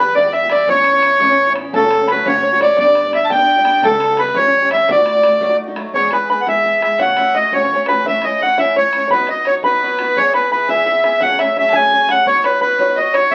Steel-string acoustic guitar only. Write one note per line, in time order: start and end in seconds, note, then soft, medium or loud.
0.00 0.15 E3 medium
0.00 0.16 G3 medium
0.00 0.16 B3 medium
0.00 0.17 G4 medium
0.16 0.25 E2 medium
0.16 0.25 B2 medium
0.16 0.25 E3 medium
0.16 0.25 G3 medium
0.16 0.24 B3 medium
0.16 0.22 G4 medium
0.24 0.44 E3 soft
0.24 0.43 G3 soft
0.24 0.43 B3 medium
0.24 0.42 G4 medium
0.43 0.50 E3 soft
0.43 0.50 G3 soft
0.43 0.51 B3 soft
0.43 0.51 G4 medium
0.51 0.67 E3 medium
0.51 0.68 G3 medium
0.51 0.67 B3 medium
0.51 0.69 G4 medium
0.68 0.77 A2 medium
0.68 0.77 E3 medium
0.68 0.77 B3 medium
0.68 0.77 C#4 medium
0.68 0.75 E4 medium
0.76 0.95 B3 soft
0.76 0.93 C#4 soft
0.76 0.92 E4 soft
0.93 1.01 B3 soft
0.93 1.02 C#4 soft
0.93 1.03 E4 medium
1.01 1.18 E3 medium
1.01 1.19 B3 medium
1.01 1.20 C#4 medium
1.01 1.20 E4 medium
1.19 1.29 A2 medium
1.19 1.29 E3 loud
1.19 1.29 B3 medium
1.19 1.29 C#4 loud
1.19 1.27 E4 loud
1.28 1.48 B3 soft
1.28 1.47 C#4 medium
1.28 1.45 E4 medium
1.46 1.56 B3 soft
1.46 1.57 C#4 medium
1.46 1.56 E4 medium
1.55 1.73 E3 medium
1.55 1.74 B3 medium
1.55 1.74 C#4 medium
1.55 1.75 E4 medium
1.74 1.82 F#2 medium
1.74 1.83 C#3 medium
1.74 1.83 F#3 medium
1.74 1.83 A3 medium
1.74 1.83 C#4 medium
1.74 1.81 F#4 medium
1.83 2.01 F#3 medium
1.83 2.00 A3 soft
1.83 2.00 C#4 soft
1.83 1.98 F#4 medium
1.99 2.07 F#3 soft
1.99 2.08 A3 soft
1.99 2.09 C#4 soft
1.99 2.08 F#4 soft
2.08 2.25 F#3 medium
2.08 2.26 A3 medium
2.08 2.26 C#4 medium
2.08 2.26 F#4 medium
2.26 2.35 F#2 medium
2.26 2.35 C#3 medium
2.26 2.35 F#3 medium
2.26 2.35 A3 medium
2.26 2.35 C#4 medium
2.26 2.34 F#4 medium
2.35 2.54 F#3 soft
2.35 2.54 A3 soft
2.35 2.52 C#4 soft
2.35 2.51 F#4 medium
2.53 2.59 F#3 soft
2.53 2.60 A3 medium
2.53 2.61 C#4 soft
2.53 2.61 F#4 medium
2.60 2.78 F#3 medium
2.60 2.79 A3 medium
2.60 2.79 C#4 medium
2.60 2.80 F#4 medium
2.78 2.87 G2 medium
2.78 2.87 D3 medium
2.78 2.88 G3 medium
2.78 2.87 B3 medium
2.78 2.86 D4 medium
2.78 2.85 G4 medium
2.86 3.06 G3 soft
2.86 3.05 B3 soft
2.86 3.04 D4 medium
2.86 3.02 G4 medium
3.03 3.11 G3 soft
3.03 3.12 B3 soft
3.03 3.13 D4 soft
3.03 3.13 G4 soft
3.12 3.30 G3 medium
3.12 3.31 B3 medium
3.12 3.31 D4 medium
3.12 3.31 G4 medium
3.30 3.40 G2 medium
3.30 3.40 D3 medium
3.30 3.40 G3 medium
3.30 3.40 B3 medium
3.30 3.39 D4 medium
3.30 3.37 G4 loud
3.38 3.58 G3 soft
3.38 3.57 B3 medium
3.38 3.56 D4 medium
3.38 3.55 G4 soft
3.56 3.64 G3 soft
3.56 3.65 B3 medium
3.56 3.66 D4 medium
3.56 3.66 G4 medium
3.65 3.83 G3 medium
3.65 3.84 B3 medium
3.65 3.85 D4 medium
3.65 3.85 G4 medium
3.83 3.92 C#3 medium
3.83 3.93 E3 medium
3.83 3.93 G3 medium
3.83 3.92 B3 medium
3.83 3.91 G4 medium
3.92 4.12 G3 soft
3.92 4.11 B3 medium
3.92 4.09 G4 medium
4.10 4.20 G3 soft
4.10 4.20 B3 soft
4.10 4.19 G4 soft
4.20 4.36 E3 medium
4.20 4.38 G3 medium
4.20 4.38 B3 medium
4.20 4.38 G4 medium
4.36 4.45 A2 medium
4.36 4.46 E3 medium
4.36 4.46 G3 medium
4.36 4.45 C#4 medium
4.36 4.44 G4 medium
4.45 4.64 G3 soft
4.45 4.63 C#4 medium
4.45 4.61 G4 medium
4.62 4.71 G3 medium
4.62 4.72 C#4 medium
4.62 4.71 G4 medium
4.71 4.87 E3 medium
4.71 4.88 G3 medium
4.71 4.89 C#4 medium
4.71 4.90 G4 medium
4.88 4.97 D3 medium
4.88 4.98 A3 medium
4.88 4.98 E4 medium
4.88 4.96 F#4 medium
4.97 5.17 A3 soft
4.97 5.16 E4 soft
4.97 5.14 F#4 medium
5.15 5.23 A3 soft
5.15 5.24 E4 soft
5.15 5.24 F#4 soft
5.23 5.41 D3 medium
5.23 5.41 A3 medium
5.23 5.42 E4 medium
5.27 5.42 F#4 medium
5.41 5.50 B2 medium
5.41 5.50 F#3 medium
5.41 5.51 A3 loud
5.41 5.50 D#4 medium
5.41 5.48 F#4 medium
5.49 5.68 A3 soft
5.49 5.67 D#4 medium
5.49 5.65 F#4 medium
5.67 5.76 A3 soft
5.67 5.77 D#4 medium
5.67 5.76 F#4 medium
5.76 5.94 F#3 medium
5.76 5.94 A3 medium
5.76 5.95 D#4 medium
5.76 5.96 F#4 medium
5.93 6.12 E2 medium
5.93 6.12 B2 medium
5.93 6.12 E3 medium
5.93 6.12 G#3 medium
5.93 6.12 B3 medium
5.93 6.10 G#4 medium
6.11 6.28 E3 soft
6.11 6.29 G#3 soft
6.11 6.30 B3 soft
6.11 6.29 G#4 medium
6.29 6.46 E3 soft
6.29 6.46 G#3 medium
6.29 6.45 B3 medium
6.29 6.45 G#4 medium
6.46 6.65 E2 medium
6.46 6.65 B2 medium
6.46 6.61 E3 medium
6.46 6.63 G#3 medium
6.46 6.64 B3 medium
6.46 6.64 G#4 medium
6.62 6.81 E3 medium
6.62 6.82 G#3 medium
6.62 6.81 B3 medium
6.62 6.80 G#4 medium
6.81 6.98 E3 soft
6.81 7.00 G#3 soft
6.81 7.00 B3 soft
6.81 6.99 G#4 soft
6.99 7.17 F#2 medium
6.99 7.17 C#3 medium
6.99 7.17 E3 medium
6.99 7.16 A3 medium
6.99 7.16 C#4 medium
6.99 7.14 F#4 medium
7.15 7.33 E3 soft
7.15 7.34 A3 soft
7.15 7.35 C#4 medium
7.15 7.34 F#4 soft
7.34 7.52 E3 medium
7.34 7.52 A3 medium
7.34 7.52 C#4 medium
7.34 7.52 F#4 medium
7.53 7.71 F#2 medium
7.53 7.71 C#3 medium
7.53 7.70 E3 medium
7.53 7.71 A3 medium
7.53 7.70 C#4 medium
7.53 7.70 F#4 medium
7.71 7.88 E3 medium
7.71 7.89 A3 medium
7.71 7.88 C#4 medium
7.71 7.87 F#4 medium
7.88 8.06 E3 soft
7.88 8.06 A3 soft
7.88 8.06 C#4 soft
7.88 8.06 F#4 medium
8.06 8.23 A2 medium
8.06 8.24 E3 medium
8.06 8.24 A3 medium
8.06 8.24 C#4 medium
8.06 8.22 E4 medium
8.23 8.40 A3 soft
8.23 8.41 C#4 medium
8.23 8.41 E4 medium
8.40 8.58 E3 medium
8.40 8.58 A3 medium
8.40 8.58 C#4 medium
8.40 8.57 E4 medium
8.59 8.77 A2 medium
8.59 8.74 E3 medium
8.59 8.76 A3 medium
8.59 8.76 C#4 medium
8.59 8.76 E4 medium
8.76 8.93 E3 medium
8.76 8.94 A3 medium
8.76 8.94 C#4 medium
8.76 8.93 E4 medium
8.95 9.13 A3 soft
8.95 9.12 C#4 soft
8.95 9.11 E4 medium
9.12 9.29 B2 medium
9.12 9.29 F#3 medium
9.12 9.30 B3 medium
9.12 9.30 D#4 medium
9.12 9.28 F#4 medium
9.29 9.47 B3 soft
9.29 9.47 D#4 soft
9.29 9.46 F#4 medium
9.47 9.64 F#3 medium
9.47 9.65 B3 medium
9.47 9.65 D#4 medium
9.47 9.64 F#4 medium
9.65 9.83 B2 medium
9.65 9.80 F#3 medium
9.65 9.81 B3 medium
9.65 9.82 D#4 medium
9.65 9.82 F#4 medium
9.82 9.99 F#3 medium
9.82 9.99 B3 medium
9.82 10.00 D#4 medium
9.82 9.98 F#4 medium
9.99 10.17 B3 soft
9.99 10.17 D#4 soft
9.99 10.16 F#4 soft
10.17 10.34 E2 medium
10.17 10.34 B2 medium
10.17 10.35 E3 medium
10.17 10.35 B3 medium
10.17 10.34 E4 medium
10.17 10.33 G#4 medium
10.34 10.50 E3 soft
10.34 10.51 B3 soft
10.34 10.52 E4 soft
10.34 10.52 G#4 medium
10.52 10.69 E3 medium
10.52 10.69 B3 medium
10.52 10.69 E4 medium
10.52 10.68 G#4 medium
10.69 10.88 E2 medium
10.69 10.88 B2 medium
10.69 10.85 E3 medium
10.69 10.87 B3 medium
10.69 10.87 E4 medium
10.69 10.86 G#4 medium
10.86 11.04 E3 medium
10.86 11.05 B3 medium
10.86 11.05 E4 medium
10.90 11.04 G#4 medium
11.05 11.23 E3 soft
11.05 11.23 B3 soft
11.05 11.23 E4 soft
11.05 11.22 G#4 medium
11.22 11.39 F#2 medium
11.22 11.40 C#3 medium
11.22 11.40 F#3 medium
11.22 11.40 A3 medium
11.22 11.39 C#4 medium
11.22 11.38 G#4 medium
11.39 11.55 F#3 soft
11.39 11.57 A3 soft
11.39 11.57 C#4 soft
11.39 11.57 G#4 medium
11.56 11.74 F#3 medium
11.56 11.75 A3 medium
11.56 11.74 C#4 medium
11.56 11.73 G#4 medium
11.74 11.93 F#2 medium
11.74 11.93 C#3 medium
11.74 11.90 F#3 medium
11.74 11.91 A3 medium
11.74 11.92 C#4 medium
11.74 11.92 G#4 medium
11.91 12.09 F#3 medium
11.91 12.10 A3 medium
11.91 12.10 C#4 medium
11.91 12.08 G#4 medium
12.10 12.26 F#3 soft
12.10 12.27 A3 medium
12.10 12.28 C#4 soft
12.10 12.27 G#4 medium
12.27 12.44 B3 medium
12.27 12.45 D#4 medium
12.27 12.45 F#4 medium
12.27 12.43 C#5 medium
12.44 12.61 D#4 soft
12.44 12.62 F#4 soft
12.44 12.62 C#5 medium
12.61 12.79 B3 medium
12.61 12.80 D#4 medium
12.61 12.79 F#4 medium
12.61 12.78 C#5 medium
12.79 12.95 B3 medium
12.79 12.96 D#4 medium
12.79 12.97 F#4 medium
12.79 12.97 C#5 medium
12.96 13.14 B3 medium
12.96 13.15 D#4 medium
12.96 13.16 F#4 medium
12.96 13.14 C#5 medium
13.15 13.32 D#4 soft
13.15 13.31 F#4 soft
13.15 13.32 C#5 medium
13.31 13.35 E2 medium
13.31 13.35 E3 medium